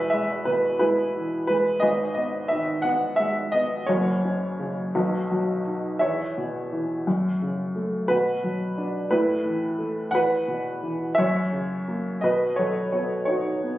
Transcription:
Already playing: E1 E2 G#4 B4 E5
0.10 G#3 E5
0.45 B2 B4
0.79 G#3 E4 G#4 B4
1.16 E3
1.47 G#3 B4
1.80 G#1 G#2 G#4 B4 D#5
2.14 B3 D#5
2.48 D#3 E5
2.82 B3 F#5
3.16 G#3 E5
3.52 B3 D#5
3.86 F#1 F#2 F#4 A#4 C#5
4.25 C#4
4.59 C#3
4.95 B1 B2
5.31 F#3
5.67 D#4
5.99 E2 C#5 E5
6.37 B2
6.72 E3
7.07 F#2
7.42 C#3
7.76 A3
8.08 B2 F#4 B4
8.44 F#3
8.78 D4
9.11 A2 E4 B4
9.45 E3
9.79 A3
10.11 E2 B4 F#5
10.48 B2
10.82 E3
11.15 F#2 E5
11.19 C#5
11.52 C#3
11.88 A#3
12.21 B2 B4 D#5
12.56 F#3 A4 C#5
12.92 B3 A4 C#5
13.25 D#4 F#4 C#5
13.64 B3

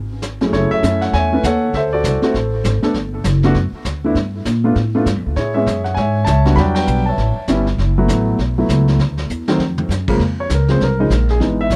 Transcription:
Already playing: G#1
0.22 snare, hi-hat pedal
0.41 F#2 A3 C#4 E4 G#4, snare
0.53 F#1 E4 A4 C#5, brush sweep, kick, snare
0.71 A4 C#5 E5, muted upright bass stroke
0.83 F#2 A3 C#4 E4 A4, kick, snare, hi-hat pedal
1.01 F#5, snare
1.13 E2 C#5 E5 G#5, brush sweep, kick, snare
1.32 A3 C#4 E4 B4
1.43 D#2 A4 C#5 F#5, kick, snare, hi-hat pedal
1.73 D2 A4 C5 E5, brush sweep, kick, snare
1.93 F#4 A4 D5
2.04 C2, kick, snare, hi-hat pedal
2.22 A3 C4 E4 F#4 A4 C5, snare
2.34 A1, brush sweep, kick, snare
2.64 G#1, kick, snare, hi-hat pedal
2.83 A3 B3 D4 A4, muted upright bass stroke, snare
2.94 G1, brush sweep, kick, snare
3.24 F#1, kick, snare, hi-hat pedal
3.43 A3 B3 D4 F#4, snare
3.54 F#2, brush sweep, kick, snare
3.72 muted upright bass stroke
3.85 D2, kick, snare, hi-hat pedal
4.04 A3 B3 D4 E4
4.15 G2, brush sweep, kick, snare
4.45 A#2, kick, snare, hi-hat pedal
4.64 A3 B3 D4 F4
4.75 A2, brush sweep, kick, snare
4.95 A3 B3 D4 F4
5.06 G2, kick, snare, hi-hat pedal
5.16 F2
5.26 D2
5.36 A2 E4 G#4 C#5, brush sweep, kick, snare
5.54 G#3 B3 C#4 E4 G#4 C#5 E5
5.66 F#2, kick, snare, hi-hat pedal
5.84 F#5, snare
5.94 G#2 C#5 E5 G#5, brush sweep, kick, snare
6.25 C#2 E5 A5, kick, snare, hi-hat pedal
6.29 C#5
6.45 G3 B3 D4 F#4, snare
6.56 E2 F#3 G3 B3 D4 B5, brush sweep, kick, snare
6.60 D5 G5
6.75 B4 G5, snare, ride
6.79 D5
6.87 B1, hi-hat pedal
7.06 C#5 E5 A5
7.18 A1, brush sweep, kick, snare
7.36 muted upright bass stroke
7.48 G1 G3 B3 C#4 E4, kick, snare, hi-hat pedal
7.67 snare
7.78 F#1, brush sweep, kick, snare
7.98 F#3 A3 B3 E4
8.08 A1, kick, snare, hi-hat pedal
8.39 B1, brush sweep, kick, snare
8.58 F#3 A3 B3 E4
8.69 C#2, kick, snare, hi-hat pedal
8.88 snare
8.99 D2, brush sweep, kick, snare
9.17 snare
9.30 E2, hi-hat pedal
9.48 D#3 F#3 A3 C4, snare
9.59 F2, snare
9.78 mid tom
9.89 F#2, snare, hi-hat pedal
10.08 C#3 F3 G#3 A#3, kick, crash
10.19 F2, brush sweep, kick, snare
10.40 C#5
10.50 C#2, kick, snare, hi-hat pedal
10.54 A#4
10.68 C#3 F3 G#3 C4 C5, snare
10.80 C2 A#4, brush sweep, kick, snare
10.99 C#3 F3 G#3 D#4
11.10 A#1, kick, snare, hi-hat pedal
11.29 G#4, snare
11.40 G#1 E3 G#3 B3 D#4, brush sweep, kick, snare
11.61 E5
11.70 B1, kick, snare, hi-hat pedal

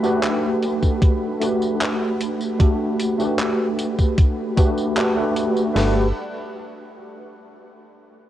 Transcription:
Already playing: A3 D4 F#4 G4 A4 B4 F#5 B5
0.02 A3 D4 F#4 G4 B4, tambourine
0.23 clap, closed hi-hat, tambourine
0.62 closed hi-hat, tambourine
0.83 kick, tambourine
1.02 kick, closed hi-hat, tambourine
1.40 A3 D4 F#4 G4 B4, closed hi-hat, tambourine
1.62 tambourine
1.81 clap, closed hi-hat, tambourine
2.21 closed hi-hat, tambourine
2.41 tambourine
2.59 A3 D4 F#4 G4 A4, kick, closed hi-hat, tambourine
3.00 closed hi-hat, tambourine
3.18 A3 D4 F#4 G4 B4, tambourine
3.39 clap, closed hi-hat, tambourine
3.79 closed hi-hat, tambourine
3.99 kick, tambourine
4.18 kick, closed hi-hat, tambourine
4.57 A3 D4 F#4 G4 B4, kick, closed hi-hat, tambourine
4.78 tambourine
4.96 A3 D4 F#4 G4 B4, clap, closed hi-hat, tambourine
5.16 A3 D4 F#4 G4 B4
5.36 closed hi-hat, tambourine
5.57 tambourine
5.74 G1 G3 A3 D4 F#4 G4 A4 B4 F#5, snare, crash
5.78 B4

